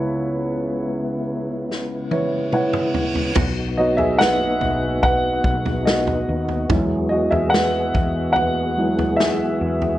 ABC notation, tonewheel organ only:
X:1
M:4/4
L:1/8
Q:1/4=72
K:B
V:1 name="Tonewheel organ"
[C,B,E]8 | [DF]8 | [E,G]8 |]
V:2 name="Tonewheel organ"
G,8 | B,8- | B,8 |]